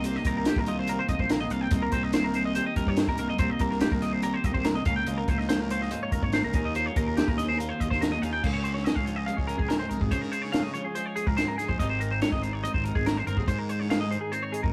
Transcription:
Already playing: C2 C3 A#3
0.04 G4 C5, closed hi-hat
0.15 D#5, snare
0.25 C2 D#3 A#3 A#4, kick, closed hi-hat
0.37 A#4
0.45 G4, snare, closed hi-hat
0.56 C2 A#4, kick
0.66 F4 D#5, closed hi-hat
0.79 C5
0.87 C3 C4 A#4, closed hi-hat
0.99 C5
1.09 C2 D#5, kick, closed hi-hat
1.19 C2 C5, kick
1.29 A#1 A#3 A#4, snare, closed hi-hat
1.41 D#5
1.50 C2 C3 A#3 F5, closed hi-hat
1.61 G5
1.71 C2 C3 A#3 D#5, kick, closed hi-hat
1.83 A#4
1.92 C2 G4 C5, kick, closed hi-hat
2.03 D#5
2.13 D#3 A#3 C5, snare, closed hi-hat
2.24 A#4
2.34 C5, closed hi-hat
2.45 D#5
2.55 G4 C5, closed hi-hat
2.66 D#5
2.76 C2 G2 D#4 A#4, kick, closed hi-hat
2.87 G2 C#5, kick
2.97 C5, snare, closed hi-hat
3.08 C2 A#4, kick
3.18 A#3 A#4, closed hi-hat
3.30 D#5
3.38 C2 C3 A#3 C5, kick, closed hi-hat
3.50 D#5
3.59 C2 G4 A#4, kick, closed hi-hat
3.71 A#4, snare
3.81 D#3 A#3 G4, snare, closed hi-hat
3.92 C2 A#4, kick
4.02 D#5, snare, closed hi-hat
4.13 C5
4.22 G4 A#4, closed hi-hat
4.34 C5
4.44 C2 A#2 D#5, kick, closed hi-hat
4.54 C2 C5, kick
4.64 C3 A#4, snare, closed hi-hat
4.75 D#5
4.85 C#2 C#3 A#3 F5, kick, closed hi-hat
4.96 G5
5.07 C#2 F4 D#5, closed hi-hat
5.18 A#4
5.28 C#2 F3 A#3 C5, kick, closed hi-hat
5.38 D#5, snare
5.49 C5, snare, closed hi-hat
5.60 A#4
5.70 F4 C5, closed hi-hat
5.82 D#5, snare
5.90 G#2 D#4 C5, closed hi-hat
6.03 C#5
6.12 C#2 A#4, kick, closed hi-hat
6.22 G#1 C#5, kick
6.33 A#3 C5, snare, closed hi-hat
6.44 C#2 A#4
6.53 D#2 D#3 C#4 A#4, kick, closed hi-hat
6.65 D#5
6.75 F4 C5, closed hi-hat
6.86 C#5
6.96 D#2 A#3 C#4 A#4, kick, closed hi-hat
7.08 A#4
7.17 G4, snare, closed hi-hat
7.28 D#2 A#4, kick
7.38 G#4 D#5, snare, closed hi-hat
7.48 C5, snare
7.58 A#2 F4 A#4, closed hi-hat
7.69 C5
7.80 D#2 D#5, kick, closed hi-hat
7.91 D#2 C5, kick, snare
8.01 C#4 A#4, snare, closed hi-hat
8.12 D#5
8.22 D#2 D#3 C#4 F5, snare, closed hi-hat
8.33 G5
8.43 C#2 C#3 F5, kick, crash
8.54 C#5
8.64 C5, closed hi-hat
8.74 C#5, snare
8.84 C#4 D#5, snare, closed hi-hat
8.95 C#2 F5, kick
9.05 F3 C#5, closed hi-hat
9.16 D#5
9.26 G#3 F5, closed hi-hat
9.37 C#2 C#5, kick
9.47 C#4 A#4, closed hi-hat
9.58 C#2 G#4, kick
9.69 G#2 A#4, snare, closed hi-hat
9.79 C5
9.89 C2 G#3 A#4, closed hi-hat
10.01 G#1 G#4, kick
10.11 C#3 C5, kick, closed hi-hat
10.21 A#4, snare
10.32 C5, closed hi-hat
10.42 C#5, snare
10.52 C#4 F5, snare, closed hi-hat
10.63 D#5, snare
10.74 F3 C#5, closed hi-hat
10.84 G#4
10.95 G#3 C5, closed hi-hat
11.06 C#5
11.16 C#4 G#4, closed hi-hat
11.27 C#2 A#4, kick
11.37 G#2 C5, snare, closed hi-hat
11.48 A#4
11.58 G#3 G#4, snare, closed hi-hat
11.68 A#1 C5, kick
11.79 G#1 G#2 D#3 C4 D#4 G4 D#5, kick, closed hi-hat
11.90 C5
12.00 A#4, closed hi-hat
12.11 C5
12.22 D#4 C#5, snare, closed hi-hat
12.32 G#1 D#5, kick
12.42 D#3 C5, closed hi-hat
12.53 C#5
12.64 C4 D#5, closed hi-hat
12.74 G#1 C5, kick
12.84 D#4 A#4, closed hi-hat
12.95 G#1 G#4, kick
13.06 G#2 A#4, snare, closed hi-hat
13.17 C5
13.27 G1 C4 A#4, closed hi-hat
13.37 D#2 G#4, kick
13.47 G#2 C5, kick, closed hi-hat
13.59 A#4
13.69 C5, closed hi-hat
13.79 C#5, snare
13.90 D#4 F5, snare, closed hi-hat
14.01 D#5, snare
14.11 D#3 C5, closed hi-hat
14.21 G#4
14.32 C4 C5, closed hi-hat
14.43 C#5
14.52 D#4 G#4, closed hi-hat
14.63 G#1 A#4, kick

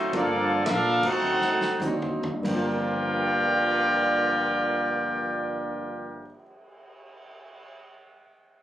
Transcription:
Already playing: A1 D3 F#3 A3 C4 D#4 F#4 A4 C5
0.13 G1 G2 F3 A#3 C4 D4 F4 A4 D5, ride
0.64 A#1 G2 F3 A#3 F4 E5, snare, hi-hat pedal, ride
0.69 C4 D4 A4 A#4 F5
1.03 A3 C4 D#4 F#4 A4 C5 F#5, muted upright bass stroke, kick, crash
1.22 D2 D3 F#3 C4 D#4
1.41 snare
1.61 muted upright bass stroke, snare
1.80 D#2 D3 F#3 C4 D4 D#4 F#4 C5, floor tom, hi-hat pedal
2.02 floor tom
2.23 floor tom
2.33 G2
2.38 G3
2.43 G1 G2 D3 F3 A#3 A#4 G5, kick, crash
2.47 F3 A#3 C4 F4 D5
2.53 C4 F4
2.58 A#4
2.90 cymbal swell

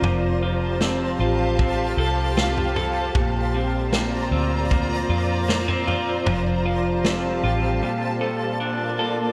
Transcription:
Already playing: A#3 C4 F4 C5
0.02 F1 F3 G4 F5 A5, floor tom
0.42 F4
0.81 C4, snare
1.19 A1 F4
1.59 C4, kick, floor tom
1.97 C2 A4
2.37 F4, snare
2.57 floor tom
2.76 A4, floor tom
3.15 A#1 A#2 F4 C5 D5 A#5, kick, floor tom
3.54 C4
3.93 A#3, snare
4.31 D2 C4
4.71 A#3, kick, floor tom
5.09 F2 F4
5.48 A#3, snare
5.68 C4, floor tom
5.87 F4, floor tom
6.26 F1 F3 G4 F5 A5, floor tom
6.66 F4
7.05 C4, snare
7.43 A1 F4
7.83 A#2 A#3 F4 D5
8.21 A4
8.60 D4
8.99 A4

